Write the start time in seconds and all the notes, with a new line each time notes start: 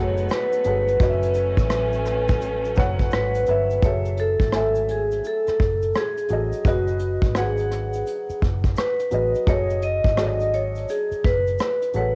Already playing: F#1 F#3 A3 B3 D#4 F#4 G#4 A4 C#5 D#5 F#5
0.17 closed hi-hat, shaker
0.29 B4, cross-stick, closed hi-hat, shaker
0.53 closed hi-hat, shaker
0.64 G1 F#3 F#4 G#4 A4 B4 C#5 F#5, closed hi-hat, shaker
0.88 closed hi-hat, shaker
1.00 F#1 F#3 A3 C#4 F#4 B4 C#5 D#5, kick, closed hi-hat, shaker
1.10 E5
1.23 closed hi-hat, shaker
1.34 closed hi-hat, shaker
1.57 A1, kick, closed hi-hat, shaker
1.70 cross-stick, closed hi-hat, shaker
1.92 closed hi-hat, shaker
2.05 cross-stick, closed hi-hat, shaker
2.28 kick, closed hi-hat, shaker
2.41 closed hi-hat, shaker
2.65 closed hi-hat, shaker
2.75 F#1 F#3 F#4 B4 C#5, kick, closed hi-hat, shaker
2.79 F#5
2.99 kick, closed hi-hat, shaker
3.11 G#1 B4, cross-stick, closed hi-hat, shaker
3.34 closed hi-hat, shaker
3.46 G1 F#3 F#4 B4 C#5, closed hi-hat, shaker
3.51 E5
3.70 closed hi-hat, shaker
3.83 F#1 F#3 F#4 G#4 A4 C#5 E5, kick, closed hi-hat, shaker
4.05 closed hi-hat, shaker
4.17 A4, closed hi-hat
4.40 G#1, kick, closed hi-hat, shaker
4.52 F#3 A3 F#4 G#5, cross-stick, closed hi-hat, shaker
4.57 E5
4.75 closed hi-hat, shaker
4.89 G#4, closed hi-hat
5.11 closed hi-hat, shaker
5.24 A4, closed hi-hat, shaker
5.47 muted fingered electric bass stroke, cross-stick, closed hi-hat, shaker
5.60 F#1, kick, closed hi-hat
5.82 closed hi-hat, shaker
5.94 G#4, cross-stick, closed hi-hat, shaker
6.17 closed hi-hat, shaker
6.29 A1 F#3 F#4 G#4 A4, closed hi-hat, shaker
6.33 D#5
6.52 closed hi-hat, shaker
6.65 F#1 F#3 F#4 G#4 B4 D#5, kick, closed hi-hat, shaker
6.87 closed hi-hat, shaker
6.99 closed hi-hat
7.22 G#1, kick, closed hi-hat, shaker
7.35 F#3 F#4 G#4 B4 F#5, cross-stick, closed hi-hat, shaker
7.57 closed hi-hat, shaker
7.71 cross-stick, closed hi-hat
7.93 closed hi-hat, shaker
8.06 closed hi-hat, shaker
8.29 muted fingered electric bass stroke, closed hi-hat, shaker
8.42 F#1, kick, closed hi-hat
8.64 kick, closed hi-hat, shaker
8.76 B4, cross-stick, closed hi-hat, shaker
9.00 closed hi-hat, shaker
9.11 A1 F#3 F#4 G#4 B4 D#5, closed hi-hat, shaker
9.35 closed hi-hat, shaker
9.46 F#1 F#3 F#4 G#4 A4 C#5 D#5, kick, closed hi-hat, shaker
9.70 closed hi-hat, shaker
9.82 D#5, closed hi-hat
10.04 G#1, kick, closed hi-hat, shaker
10.17 F#3 F#4 G#4 A4 C#5 D5, cross-stick, closed hi-hat, shaker
10.26 D#5
10.40 closed hi-hat, shaker
10.53 C#5, closed hi-hat
10.75 closed hi-hat, shaker
10.88 G#4, closed hi-hat, shaker
11.11 muted fingered electric bass stroke, closed hi-hat, shaker
11.24 F#1 B4, kick, closed hi-hat
11.47 closed hi-hat, shaker
11.59 cross-stick, closed hi-hat, shaker
11.82 closed hi-hat, shaker
11.93 A1 F#3 F#4 G#4 A4 B4 C#5 F#5, closed hi-hat, shaker